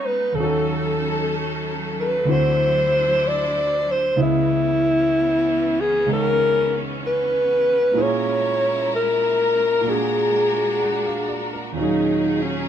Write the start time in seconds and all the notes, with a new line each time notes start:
Already playing: B2 F#3 G#3 B3 C#4 D#4 G#4
0.06 B4
0.32 D#2 D#3 A4
0.36 F#3 C#4 F#4
0.43 A4
2.00 B4
2.24 D2 D3 C4 E4
2.28 D4 E4 F#4 C5
3.28 D5
3.92 C5
4.16 C#2 C#3 E3 B3 C#4 E4 D#5
4.22 E4
5.81 G#4
6.06 C#3 G#3 C#4 D#4
6.13 A#4
7.07 B4
7.93 A#2 G#3 A#3 C#4 E4 A#4
7.97 E4 G#4
8.02 C#5
8.96 A#4
9.81 A#2 A#3 D4
9.85 D4 F#4
9.89 G#4
10.81 F#5
11.06 F5
11.29 D5
11.53 A#4
11.72 D#2 A#2
11.77 F#3 C#4 D#4 G#4 F5
11.81 F#3 G#4
12.42 C#4